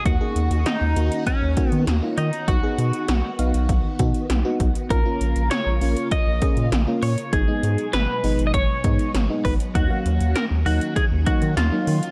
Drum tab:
HH |x-xxx-xxx-xxx-xx|x-xxx-xxx-xxx-xx|x-xxx-oxx-xxx-ox|x-xxx-oxx-xxx-ox|
SD |----o-------o---|----o-------o---|----o-------o---|----o-------o---|
BD |o-------o-o-----|o-------o-o---o-|o-------o-o-----|o-------o-o---o-|

HH |x-xxx-oxx-xxx-ox|
SD |----o-------o---|
BD |o-------o-o-----|